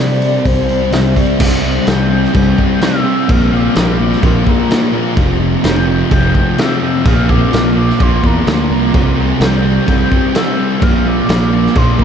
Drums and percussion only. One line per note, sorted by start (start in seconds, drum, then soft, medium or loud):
0.22 open hi-hat soft
0.45 kick loud
0.45 open hi-hat medium
0.69 open hi-hat soft
0.92 snare loud
0.92 open hi-hat medium
1.16 kick medium
1.16 open hi-hat medium
1.40 kick loud
1.40 crash loud
1.40 crash medium
1.87 snare loud
1.87 crash medium
2.24 snare soft
2.34 kick loud
2.34 crash medium
2.58 kick medium
2.82 snare loud
2.82 crash medium
3.29 kick loud
3.29 crash medium
3.76 snare loud
3.76 crash medium
4.12 snare soft
4.23 kick loud
4.23 crash medium
4.47 kick medium
4.71 snare loud
4.71 crash medium
5.17 kick loud
5.17 crash medium
5.64 snare loud
5.64 crash medium
6.11 kick loud
6.11 crash medium
6.35 kick medium
6.58 snare loud
6.58 crash medium
7.05 kick loud
7.05 crash medium
7.29 kick medium
7.53 snare loud
7.53 crash medium
7.90 snare soft
8.00 kick loud
8.00 crash medium
8.24 kick medium
8.47 snare loud
8.47 crash medium
8.94 kick loud
8.94 crash medium
9.41 snare loud
9.41 crash medium
9.88 kick loud
9.88 crash medium
10.12 kick medium
10.35 snare loud
10.35 crash medium
10.82 kick loud
10.82 crash medium
11.29 snare loud
11.29 crash medium
11.66 snare soft
11.75 kick loud
11.75 crash medium
11.99 kick medium